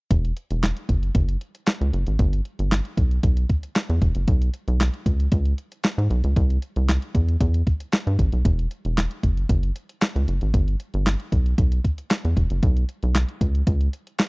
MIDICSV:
0, 0, Header, 1, 3, 480
1, 0, Start_track
1, 0, Tempo, 521739
1, 97, Time_signature, 4, 2, 24, 8
1, 13143, End_track
2, 0, Start_track
2, 0, Title_t, "Analog synth bass"
2, 0, Program_c, 0, 38
2, 99, Note_on_c, 0, 28, 105
2, 297, Note_off_c, 0, 28, 0
2, 467, Note_on_c, 0, 28, 95
2, 665, Note_off_c, 0, 28, 0
2, 818, Note_on_c, 0, 30, 80
2, 1017, Note_off_c, 0, 30, 0
2, 1056, Note_on_c, 0, 30, 100
2, 1256, Note_off_c, 0, 30, 0
2, 1665, Note_on_c, 0, 37, 89
2, 1758, Note_off_c, 0, 37, 0
2, 1778, Note_on_c, 0, 30, 97
2, 1883, Note_off_c, 0, 30, 0
2, 1906, Note_on_c, 0, 32, 84
2, 1999, Note_off_c, 0, 32, 0
2, 2017, Note_on_c, 0, 31, 115
2, 2216, Note_off_c, 0, 31, 0
2, 2385, Note_on_c, 0, 31, 97
2, 2583, Note_off_c, 0, 31, 0
2, 2736, Note_on_c, 0, 35, 77
2, 2935, Note_off_c, 0, 35, 0
2, 2976, Note_on_c, 0, 35, 89
2, 3175, Note_off_c, 0, 35, 0
2, 3583, Note_on_c, 0, 40, 96
2, 3677, Note_off_c, 0, 40, 0
2, 3696, Note_on_c, 0, 28, 98
2, 3802, Note_off_c, 0, 28, 0
2, 3824, Note_on_c, 0, 30, 76
2, 3917, Note_off_c, 0, 30, 0
2, 3935, Note_on_c, 0, 35, 111
2, 4134, Note_off_c, 0, 35, 0
2, 4303, Note_on_c, 0, 35, 108
2, 4502, Note_off_c, 0, 35, 0
2, 4654, Note_on_c, 0, 37, 81
2, 4854, Note_off_c, 0, 37, 0
2, 4894, Note_on_c, 0, 37, 100
2, 5094, Note_off_c, 0, 37, 0
2, 5501, Note_on_c, 0, 44, 96
2, 5596, Note_off_c, 0, 44, 0
2, 5614, Note_on_c, 0, 35, 103
2, 5721, Note_off_c, 0, 35, 0
2, 5741, Note_on_c, 0, 37, 87
2, 5836, Note_off_c, 0, 37, 0
2, 5856, Note_on_c, 0, 36, 114
2, 6055, Note_off_c, 0, 36, 0
2, 6223, Note_on_c, 0, 36, 97
2, 6422, Note_off_c, 0, 36, 0
2, 6576, Note_on_c, 0, 40, 87
2, 6775, Note_off_c, 0, 40, 0
2, 6813, Note_on_c, 0, 40, 99
2, 7013, Note_off_c, 0, 40, 0
2, 7423, Note_on_c, 0, 43, 97
2, 7517, Note_off_c, 0, 43, 0
2, 7534, Note_on_c, 0, 33, 94
2, 7641, Note_off_c, 0, 33, 0
2, 7662, Note_on_c, 0, 35, 83
2, 7756, Note_off_c, 0, 35, 0
2, 7774, Note_on_c, 0, 28, 113
2, 7974, Note_off_c, 0, 28, 0
2, 8143, Note_on_c, 0, 28, 93
2, 8342, Note_off_c, 0, 28, 0
2, 8496, Note_on_c, 0, 30, 80
2, 8695, Note_off_c, 0, 30, 0
2, 8734, Note_on_c, 0, 30, 108
2, 8934, Note_off_c, 0, 30, 0
2, 9344, Note_on_c, 0, 37, 94
2, 9437, Note_off_c, 0, 37, 0
2, 9457, Note_on_c, 0, 30, 85
2, 9562, Note_off_c, 0, 30, 0
2, 9587, Note_on_c, 0, 32, 92
2, 9679, Note_off_c, 0, 32, 0
2, 9696, Note_on_c, 0, 31, 112
2, 9895, Note_off_c, 0, 31, 0
2, 10066, Note_on_c, 0, 31, 105
2, 10264, Note_off_c, 0, 31, 0
2, 10416, Note_on_c, 0, 35, 91
2, 10615, Note_off_c, 0, 35, 0
2, 10655, Note_on_c, 0, 35, 93
2, 10855, Note_off_c, 0, 35, 0
2, 11267, Note_on_c, 0, 40, 86
2, 11359, Note_off_c, 0, 40, 0
2, 11378, Note_on_c, 0, 28, 92
2, 11483, Note_off_c, 0, 28, 0
2, 11507, Note_on_c, 0, 30, 84
2, 11599, Note_off_c, 0, 30, 0
2, 11617, Note_on_c, 0, 35, 118
2, 11816, Note_off_c, 0, 35, 0
2, 11988, Note_on_c, 0, 35, 101
2, 12185, Note_off_c, 0, 35, 0
2, 12336, Note_on_c, 0, 37, 83
2, 12536, Note_off_c, 0, 37, 0
2, 12577, Note_on_c, 0, 37, 96
2, 12776, Note_off_c, 0, 37, 0
2, 13143, End_track
3, 0, Start_track
3, 0, Title_t, "Drums"
3, 98, Note_on_c, 9, 36, 100
3, 99, Note_on_c, 9, 42, 89
3, 190, Note_off_c, 9, 36, 0
3, 191, Note_off_c, 9, 42, 0
3, 227, Note_on_c, 9, 42, 48
3, 319, Note_off_c, 9, 42, 0
3, 337, Note_on_c, 9, 42, 66
3, 429, Note_off_c, 9, 42, 0
3, 465, Note_on_c, 9, 42, 57
3, 557, Note_off_c, 9, 42, 0
3, 577, Note_on_c, 9, 42, 86
3, 584, Note_on_c, 9, 38, 126
3, 584, Note_on_c, 9, 39, 85
3, 669, Note_off_c, 9, 42, 0
3, 676, Note_off_c, 9, 38, 0
3, 676, Note_off_c, 9, 39, 0
3, 705, Note_on_c, 9, 42, 55
3, 797, Note_off_c, 9, 42, 0
3, 818, Note_on_c, 9, 36, 80
3, 819, Note_on_c, 9, 42, 67
3, 910, Note_off_c, 9, 36, 0
3, 911, Note_off_c, 9, 42, 0
3, 946, Note_on_c, 9, 42, 44
3, 1038, Note_off_c, 9, 42, 0
3, 1056, Note_on_c, 9, 42, 100
3, 1057, Note_on_c, 9, 36, 110
3, 1148, Note_off_c, 9, 42, 0
3, 1149, Note_off_c, 9, 36, 0
3, 1183, Note_on_c, 9, 42, 51
3, 1275, Note_off_c, 9, 42, 0
3, 1299, Note_on_c, 9, 42, 74
3, 1391, Note_off_c, 9, 42, 0
3, 1424, Note_on_c, 9, 42, 51
3, 1516, Note_off_c, 9, 42, 0
3, 1531, Note_on_c, 9, 42, 92
3, 1541, Note_on_c, 9, 38, 114
3, 1541, Note_on_c, 9, 39, 84
3, 1623, Note_off_c, 9, 42, 0
3, 1633, Note_off_c, 9, 38, 0
3, 1633, Note_off_c, 9, 39, 0
3, 1669, Note_on_c, 9, 42, 44
3, 1761, Note_off_c, 9, 42, 0
3, 1780, Note_on_c, 9, 42, 70
3, 1872, Note_off_c, 9, 42, 0
3, 1900, Note_on_c, 9, 42, 56
3, 1992, Note_off_c, 9, 42, 0
3, 2016, Note_on_c, 9, 42, 85
3, 2017, Note_on_c, 9, 36, 105
3, 2108, Note_off_c, 9, 42, 0
3, 2109, Note_off_c, 9, 36, 0
3, 2144, Note_on_c, 9, 42, 49
3, 2236, Note_off_c, 9, 42, 0
3, 2256, Note_on_c, 9, 42, 55
3, 2348, Note_off_c, 9, 42, 0
3, 2384, Note_on_c, 9, 42, 57
3, 2476, Note_off_c, 9, 42, 0
3, 2495, Note_on_c, 9, 42, 79
3, 2502, Note_on_c, 9, 38, 109
3, 2502, Note_on_c, 9, 39, 99
3, 2587, Note_off_c, 9, 42, 0
3, 2594, Note_off_c, 9, 38, 0
3, 2594, Note_off_c, 9, 39, 0
3, 2622, Note_on_c, 9, 42, 53
3, 2714, Note_off_c, 9, 42, 0
3, 2736, Note_on_c, 9, 36, 77
3, 2736, Note_on_c, 9, 42, 64
3, 2828, Note_off_c, 9, 36, 0
3, 2828, Note_off_c, 9, 42, 0
3, 2864, Note_on_c, 9, 42, 38
3, 2956, Note_off_c, 9, 42, 0
3, 2974, Note_on_c, 9, 42, 97
3, 2975, Note_on_c, 9, 36, 96
3, 3066, Note_off_c, 9, 42, 0
3, 3067, Note_off_c, 9, 36, 0
3, 3099, Note_on_c, 9, 42, 51
3, 3191, Note_off_c, 9, 42, 0
3, 3215, Note_on_c, 9, 42, 69
3, 3216, Note_on_c, 9, 36, 86
3, 3307, Note_off_c, 9, 42, 0
3, 3308, Note_off_c, 9, 36, 0
3, 3341, Note_on_c, 9, 42, 54
3, 3433, Note_off_c, 9, 42, 0
3, 3450, Note_on_c, 9, 42, 88
3, 3460, Note_on_c, 9, 38, 100
3, 3460, Note_on_c, 9, 39, 90
3, 3542, Note_off_c, 9, 42, 0
3, 3552, Note_off_c, 9, 38, 0
3, 3552, Note_off_c, 9, 39, 0
3, 3585, Note_on_c, 9, 42, 42
3, 3677, Note_off_c, 9, 42, 0
3, 3695, Note_on_c, 9, 36, 96
3, 3695, Note_on_c, 9, 42, 63
3, 3787, Note_off_c, 9, 36, 0
3, 3787, Note_off_c, 9, 42, 0
3, 3816, Note_on_c, 9, 42, 60
3, 3908, Note_off_c, 9, 42, 0
3, 3934, Note_on_c, 9, 42, 87
3, 3935, Note_on_c, 9, 36, 97
3, 4026, Note_off_c, 9, 42, 0
3, 4027, Note_off_c, 9, 36, 0
3, 4064, Note_on_c, 9, 42, 50
3, 4156, Note_off_c, 9, 42, 0
3, 4173, Note_on_c, 9, 42, 65
3, 4265, Note_off_c, 9, 42, 0
3, 4303, Note_on_c, 9, 42, 50
3, 4395, Note_off_c, 9, 42, 0
3, 4415, Note_on_c, 9, 42, 89
3, 4422, Note_on_c, 9, 38, 124
3, 4422, Note_on_c, 9, 39, 91
3, 4507, Note_off_c, 9, 42, 0
3, 4514, Note_off_c, 9, 38, 0
3, 4514, Note_off_c, 9, 39, 0
3, 4541, Note_on_c, 9, 42, 53
3, 4633, Note_off_c, 9, 42, 0
3, 4655, Note_on_c, 9, 36, 82
3, 4656, Note_on_c, 9, 42, 67
3, 4747, Note_off_c, 9, 36, 0
3, 4748, Note_off_c, 9, 42, 0
3, 4783, Note_on_c, 9, 42, 44
3, 4875, Note_off_c, 9, 42, 0
3, 4892, Note_on_c, 9, 42, 97
3, 4893, Note_on_c, 9, 36, 112
3, 4984, Note_off_c, 9, 42, 0
3, 4985, Note_off_c, 9, 36, 0
3, 5018, Note_on_c, 9, 42, 47
3, 5110, Note_off_c, 9, 42, 0
3, 5135, Note_on_c, 9, 42, 69
3, 5227, Note_off_c, 9, 42, 0
3, 5260, Note_on_c, 9, 42, 56
3, 5352, Note_off_c, 9, 42, 0
3, 5369, Note_on_c, 9, 42, 89
3, 5378, Note_on_c, 9, 38, 116
3, 5379, Note_on_c, 9, 39, 81
3, 5461, Note_off_c, 9, 42, 0
3, 5470, Note_off_c, 9, 38, 0
3, 5471, Note_off_c, 9, 39, 0
3, 5507, Note_on_c, 9, 42, 41
3, 5599, Note_off_c, 9, 42, 0
3, 5617, Note_on_c, 9, 42, 62
3, 5709, Note_off_c, 9, 42, 0
3, 5739, Note_on_c, 9, 42, 54
3, 5831, Note_off_c, 9, 42, 0
3, 5854, Note_on_c, 9, 42, 83
3, 5855, Note_on_c, 9, 36, 106
3, 5946, Note_off_c, 9, 42, 0
3, 5947, Note_off_c, 9, 36, 0
3, 5983, Note_on_c, 9, 42, 41
3, 6075, Note_off_c, 9, 42, 0
3, 6093, Note_on_c, 9, 42, 64
3, 6185, Note_off_c, 9, 42, 0
3, 6221, Note_on_c, 9, 42, 55
3, 6313, Note_off_c, 9, 42, 0
3, 6334, Note_on_c, 9, 42, 84
3, 6341, Note_on_c, 9, 38, 122
3, 6341, Note_on_c, 9, 39, 85
3, 6426, Note_off_c, 9, 42, 0
3, 6433, Note_off_c, 9, 38, 0
3, 6433, Note_off_c, 9, 39, 0
3, 6460, Note_on_c, 9, 42, 59
3, 6552, Note_off_c, 9, 42, 0
3, 6574, Note_on_c, 9, 36, 79
3, 6575, Note_on_c, 9, 42, 68
3, 6666, Note_off_c, 9, 36, 0
3, 6667, Note_off_c, 9, 42, 0
3, 6702, Note_on_c, 9, 42, 40
3, 6794, Note_off_c, 9, 42, 0
3, 6813, Note_on_c, 9, 36, 110
3, 6813, Note_on_c, 9, 42, 96
3, 6905, Note_off_c, 9, 36, 0
3, 6905, Note_off_c, 9, 42, 0
3, 6939, Note_on_c, 9, 42, 50
3, 7031, Note_off_c, 9, 42, 0
3, 7054, Note_on_c, 9, 42, 68
3, 7055, Note_on_c, 9, 36, 88
3, 7146, Note_off_c, 9, 42, 0
3, 7147, Note_off_c, 9, 36, 0
3, 7179, Note_on_c, 9, 42, 59
3, 7271, Note_off_c, 9, 42, 0
3, 7289, Note_on_c, 9, 42, 88
3, 7299, Note_on_c, 9, 38, 114
3, 7299, Note_on_c, 9, 39, 79
3, 7381, Note_off_c, 9, 42, 0
3, 7391, Note_off_c, 9, 38, 0
3, 7391, Note_off_c, 9, 39, 0
3, 7425, Note_on_c, 9, 42, 42
3, 7517, Note_off_c, 9, 42, 0
3, 7534, Note_on_c, 9, 36, 93
3, 7535, Note_on_c, 9, 42, 69
3, 7626, Note_off_c, 9, 36, 0
3, 7627, Note_off_c, 9, 42, 0
3, 7658, Note_on_c, 9, 42, 49
3, 7750, Note_off_c, 9, 42, 0
3, 7775, Note_on_c, 9, 36, 108
3, 7776, Note_on_c, 9, 42, 98
3, 7867, Note_off_c, 9, 36, 0
3, 7868, Note_off_c, 9, 42, 0
3, 7903, Note_on_c, 9, 42, 50
3, 7995, Note_off_c, 9, 42, 0
3, 8013, Note_on_c, 9, 42, 58
3, 8105, Note_off_c, 9, 42, 0
3, 8142, Note_on_c, 9, 42, 55
3, 8234, Note_off_c, 9, 42, 0
3, 8254, Note_on_c, 9, 42, 84
3, 8260, Note_on_c, 9, 38, 110
3, 8261, Note_on_c, 9, 39, 94
3, 8346, Note_off_c, 9, 42, 0
3, 8352, Note_off_c, 9, 38, 0
3, 8353, Note_off_c, 9, 39, 0
3, 8380, Note_on_c, 9, 42, 52
3, 8472, Note_off_c, 9, 42, 0
3, 8495, Note_on_c, 9, 36, 86
3, 8495, Note_on_c, 9, 42, 68
3, 8587, Note_off_c, 9, 36, 0
3, 8587, Note_off_c, 9, 42, 0
3, 8624, Note_on_c, 9, 42, 41
3, 8716, Note_off_c, 9, 42, 0
3, 8734, Note_on_c, 9, 36, 97
3, 8734, Note_on_c, 9, 42, 90
3, 8826, Note_off_c, 9, 36, 0
3, 8826, Note_off_c, 9, 42, 0
3, 8861, Note_on_c, 9, 42, 53
3, 8953, Note_off_c, 9, 42, 0
3, 8977, Note_on_c, 9, 42, 75
3, 9069, Note_off_c, 9, 42, 0
3, 9102, Note_on_c, 9, 42, 60
3, 9194, Note_off_c, 9, 42, 0
3, 9211, Note_on_c, 9, 42, 96
3, 9221, Note_on_c, 9, 38, 111
3, 9221, Note_on_c, 9, 39, 97
3, 9303, Note_off_c, 9, 42, 0
3, 9313, Note_off_c, 9, 38, 0
3, 9313, Note_off_c, 9, 39, 0
3, 9347, Note_on_c, 9, 42, 47
3, 9439, Note_off_c, 9, 42, 0
3, 9458, Note_on_c, 9, 42, 64
3, 9550, Note_off_c, 9, 42, 0
3, 9579, Note_on_c, 9, 42, 51
3, 9671, Note_off_c, 9, 42, 0
3, 9695, Note_on_c, 9, 36, 105
3, 9696, Note_on_c, 9, 42, 83
3, 9787, Note_off_c, 9, 36, 0
3, 9788, Note_off_c, 9, 42, 0
3, 9824, Note_on_c, 9, 42, 45
3, 9916, Note_off_c, 9, 42, 0
3, 9934, Note_on_c, 9, 42, 61
3, 10026, Note_off_c, 9, 42, 0
3, 10063, Note_on_c, 9, 42, 53
3, 10155, Note_off_c, 9, 42, 0
3, 10174, Note_on_c, 9, 42, 83
3, 10181, Note_on_c, 9, 38, 122
3, 10181, Note_on_c, 9, 39, 101
3, 10266, Note_off_c, 9, 42, 0
3, 10273, Note_off_c, 9, 38, 0
3, 10273, Note_off_c, 9, 39, 0
3, 10301, Note_on_c, 9, 42, 53
3, 10393, Note_off_c, 9, 42, 0
3, 10416, Note_on_c, 9, 36, 72
3, 10417, Note_on_c, 9, 42, 65
3, 10508, Note_off_c, 9, 36, 0
3, 10509, Note_off_c, 9, 42, 0
3, 10543, Note_on_c, 9, 42, 44
3, 10635, Note_off_c, 9, 42, 0
3, 10655, Note_on_c, 9, 36, 103
3, 10655, Note_on_c, 9, 42, 102
3, 10747, Note_off_c, 9, 36, 0
3, 10747, Note_off_c, 9, 42, 0
3, 10781, Note_on_c, 9, 42, 56
3, 10873, Note_off_c, 9, 42, 0
3, 10897, Note_on_c, 9, 36, 78
3, 10898, Note_on_c, 9, 42, 69
3, 10989, Note_off_c, 9, 36, 0
3, 10990, Note_off_c, 9, 42, 0
3, 11022, Note_on_c, 9, 42, 60
3, 11114, Note_off_c, 9, 42, 0
3, 11131, Note_on_c, 9, 42, 83
3, 11141, Note_on_c, 9, 38, 109
3, 11141, Note_on_c, 9, 39, 92
3, 11223, Note_off_c, 9, 42, 0
3, 11233, Note_off_c, 9, 38, 0
3, 11233, Note_off_c, 9, 39, 0
3, 11267, Note_on_c, 9, 42, 44
3, 11359, Note_off_c, 9, 42, 0
3, 11378, Note_on_c, 9, 36, 89
3, 11380, Note_on_c, 9, 42, 64
3, 11470, Note_off_c, 9, 36, 0
3, 11472, Note_off_c, 9, 42, 0
3, 11501, Note_on_c, 9, 42, 55
3, 11593, Note_off_c, 9, 42, 0
3, 11616, Note_on_c, 9, 42, 83
3, 11617, Note_on_c, 9, 36, 106
3, 11708, Note_off_c, 9, 42, 0
3, 11709, Note_off_c, 9, 36, 0
3, 11745, Note_on_c, 9, 42, 43
3, 11837, Note_off_c, 9, 42, 0
3, 11857, Note_on_c, 9, 42, 63
3, 11949, Note_off_c, 9, 42, 0
3, 11984, Note_on_c, 9, 42, 52
3, 12076, Note_off_c, 9, 42, 0
3, 12095, Note_on_c, 9, 42, 84
3, 12102, Note_on_c, 9, 38, 118
3, 12102, Note_on_c, 9, 39, 101
3, 12187, Note_off_c, 9, 42, 0
3, 12194, Note_off_c, 9, 38, 0
3, 12194, Note_off_c, 9, 39, 0
3, 12223, Note_on_c, 9, 42, 58
3, 12315, Note_off_c, 9, 42, 0
3, 12337, Note_on_c, 9, 36, 83
3, 12339, Note_on_c, 9, 42, 71
3, 12429, Note_off_c, 9, 36, 0
3, 12431, Note_off_c, 9, 42, 0
3, 12465, Note_on_c, 9, 42, 45
3, 12557, Note_off_c, 9, 42, 0
3, 12576, Note_on_c, 9, 36, 112
3, 12576, Note_on_c, 9, 42, 95
3, 12668, Note_off_c, 9, 36, 0
3, 12668, Note_off_c, 9, 42, 0
3, 12703, Note_on_c, 9, 42, 52
3, 12795, Note_off_c, 9, 42, 0
3, 12818, Note_on_c, 9, 42, 72
3, 12910, Note_off_c, 9, 42, 0
3, 12944, Note_on_c, 9, 42, 59
3, 13036, Note_off_c, 9, 42, 0
3, 13051, Note_on_c, 9, 42, 96
3, 13060, Note_on_c, 9, 38, 114
3, 13061, Note_on_c, 9, 39, 95
3, 13143, Note_off_c, 9, 38, 0
3, 13143, Note_off_c, 9, 39, 0
3, 13143, Note_off_c, 9, 42, 0
3, 13143, End_track
0, 0, End_of_file